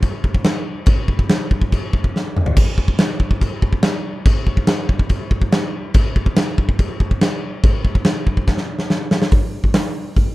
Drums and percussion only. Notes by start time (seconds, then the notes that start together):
0.02 kick, china
0.24 kick
0.34 kick
0.44 snare, china
0.86 kick, china
1.08 kick
1.19 kick
1.29 snare, china
1.51 kick
1.62 kick
1.72 kick, china
1.93 kick
2.04 kick
2.16 snare
2.37 mid tom
2.46 floor tom
2.57 kick, crash, china
2.78 kick
2.88 kick
2.98 snare, china
3.20 kick
3.31 kick
3.41 kick, china
3.62 kick
3.73 kick
3.83 snare, china
4.26 kick, china
4.47 kick
4.57 kick
4.67 snare, china
4.89 kick
4.99 kick
5.09 kick, china
5.31 kick
5.42 kick
5.52 snare, china
5.94 kick, china
6.16 kick
6.26 kick
6.36 snare, china
6.58 kick
6.69 kick
6.79 kick, china
7.00 kick
7.11 kick
7.21 snare, china
7.64 kick, china
7.85 kick
7.95 kick
8.05 snare, china
8.27 kick
8.37 kick
8.47 kick, snare
8.57 snare
8.79 snare
8.90 snare
9.11 snare
9.22 snare
9.31 kick, open hi-hat
9.64 kick
9.74 snare, open hi-hat
10.16 kick, open hi-hat